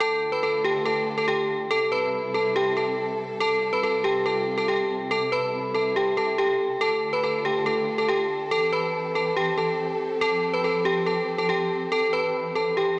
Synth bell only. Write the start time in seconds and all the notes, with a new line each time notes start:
0.00 A4 A5
0.32 B4 B5
0.43 A4 A5
0.64 G4 G5
0.85 A4 A5
1.18 A4 A5
1.28 G4 G5
1.71 A4 A5
1.92 B4 B5
2.34 A4 A5
2.56 G4 G5
2.77 A4 A5
3.40 A4 A5
3.73 B4 B5
3.83 A4 A5
4.04 G4 G5
4.26 A4 A5
4.58 A4 A5
4.68 G4 G5
5.11 A4 A5
5.32 B4 B5
5.75 A4 A5
5.96 G4 G5
6.17 A4 A5
6.38 G4 G5
6.81 A4 A5
7.13 B4 B5
7.24 A4 A5
7.45 G4 G5
7.66 A4 A5
7.98 A4 A5
8.08 G4 G5
8.51 A4 A5
8.73 B4 B5
9.15 A4 A5
9.37 G4 G5
9.58 A4 A5
10.21 A4 A5
10.54 B4 B5
10.64 A4 A5
10.85 G4 G5
11.06 A4 A5
11.38 A4 A5
11.49 G4 G5
11.92 A4 A5
12.13 B4 B5
12.55 A4 A5
12.77 G4 G5